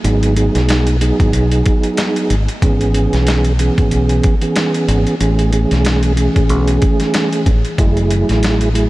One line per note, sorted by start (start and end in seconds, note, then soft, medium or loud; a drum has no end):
0.03 0.48 G#1 loud
0.03 0.34 F#3 medium
0.03 0.34 B3 medium
0.03 0.34 D#4 loud
0.03 0.35 G#4 loud
0.03 closed hi-hat medium
0.23 closed hi-hat medium
0.36 0.96 F#3 medium
0.36 0.96 B3 medium
0.36 0.97 D#4 medium
0.36 0.97 G#4 loud
0.36 closed hi-hat medium
0.55 1.10 B1 medium
0.55 snare soft
0.55 closed hi-hat soft
0.69 snare loud
0.69 closed hi-hat medium
0.87 closed hi-hat medium
1.00 2.35 F#3 medium
1.00 2.35 B3 medium
1.00 2.35 D#4 medium
1.00 2.36 G#4 loud
1.00 closed hi-hat medium
1.20 1.32 G#1 medium
1.20 kick loud
1.20 closed hi-hat soft
1.33 1.61 B1 medium
1.33 closed hi-hat loud
1.51 closed hi-hat medium
1.66 kick medium
1.66 closed hi-hat medium
1.83 closed hi-hat medium
1.97 snare loud
1.97 closed hi-hat loud
2.16 closed hi-hat medium
2.30 2.46 G#1 medium
2.30 closed hi-hat medium
2.48 closed hi-hat soft
2.62 3.06 G#1 loud
2.62 3.52 E3 medium
2.62 3.52 B3 medium
2.62 3.53 C#4 medium
2.62 3.53 G#4 loud
2.62 kick loud
2.62 closed hi-hat medium
2.81 closed hi-hat medium
2.94 closed hi-hat medium
3.13 3.68 B1 medium
3.13 snare soft
3.13 closed hi-hat soft
3.27 snare loud
3.27 closed hi-hat medium
3.45 closed hi-hat medium
3.59 4.34 E3 loud
3.59 4.35 B3 medium
3.59 4.35 C#4 medium
3.59 4.35 G#4 medium
3.59 closed hi-hat medium
3.78 3.90 G#1 medium
3.78 kick loud
3.78 closed hi-hat soft
3.91 4.19 B1 medium
3.91 closed hi-hat loud
4.09 closed hi-hat medium
4.23 kick medium
4.23 closed hi-hat medium
4.41 5.15 E3 medium
4.41 5.15 B3 medium
4.41 5.15 C#4 medium
4.41 5.15 G#4 loud
4.41 closed hi-hat medium
4.56 snare loud
4.56 closed hi-hat loud
4.74 closed hi-hat medium
4.88 5.04 G#1 loud
4.88 closed hi-hat medium
5.07 closed hi-hat soft
5.20 5.64 A1 loud
5.20 5.50 E3 medium
5.20 5.50 A3 medium
5.20 5.51 C#4 medium
5.20 5.51 G#4 loud
5.20 closed hi-hat medium
5.39 closed hi-hat soft
5.52 6.12 E3 medium
5.52 6.13 A3 medium
5.52 6.13 C#4 medium
5.52 6.13 G#4 loud
5.52 closed hi-hat medium
5.71 6.27 B1 medium
5.71 snare soft
5.71 closed hi-hat soft
5.85 snare loud
5.85 closed hi-hat medium
6.03 closed hi-hat medium
6.15 7.50 E3 medium
6.15 7.51 A3 medium
6.15 7.51 C#4 medium
6.15 7.51 G#4 loud
6.15 closed hi-hat medium
6.36 6.50 A1 medium
6.36 kick medium
6.36 closed hi-hat soft
6.49 6.77 B1 medium
6.49 closed hi-hat loud
6.67 closed hi-hat medium
6.82 kick medium
6.82 closed hi-hat medium
7.00 snare soft
7.00 closed hi-hat medium
7.14 snare loud
7.14 closed hi-hat loud
7.33 closed hi-hat medium
7.46 7.62 A1 loud
7.46 kick medium
7.46 closed hi-hat medium
7.65 closed hi-hat soft
7.78 8.22 F#1 loud
7.78 8.68 F#3 medium
7.78 8.69 A3 medium
7.78 8.69 E4 medium
7.78 8.69 G#4 loud
7.78 kick loud
7.78 closed hi-hat medium
7.97 closed hi-hat medium
8.11 closed hi-hat medium
8.29 8.85 A1 medium
8.29 snare soft
8.29 closed hi-hat soft
8.43 snare loud
8.43 closed hi-hat medium
8.61 closed hi-hat medium
8.73 8.89 F#3 medium
8.73 8.89 A3 medium
8.73 8.89 E4 medium
8.73 8.89 G#4 loud
8.73 closed hi-hat medium